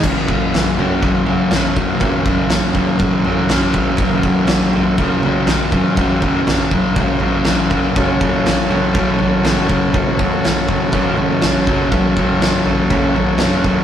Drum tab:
CC |x-------|--------|--------|--------|
SD |--o---o-|--o---o-|--o---o-|--o---o-|
FT |oooooooo|oooooooo|oooooooo|oooooooo|
BD |oo--o--o|oo-oo--o|oo--o--o|oo-oo--o|

CC |--------|--------|--------|
SD |--o---o-|--o---o-|--o---o-|
FT |oooooooo|oooooooo|oooooooo|
BD |oo--o--o|oo-oo--o|oo--o--o|